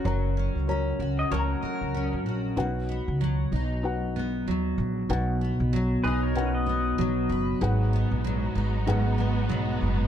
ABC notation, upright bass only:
X:1
M:4/4
L:1/16
Q:"Swing 16ths" 1/4=95
K:B
V:1 name="Upright bass" clef=bass
F,,,3 C,,3 C,,2 C,,2 z C,,2 F,,, A,,,2 | B,,,3 C,,3 B,,,6 D,,2 A,,,2 | B,,,3 B,,,3 B,,,6 B,,,2 F,,,2 | G,,,3 A,,,3 G,,,6 B,,,2 F,,,2 |]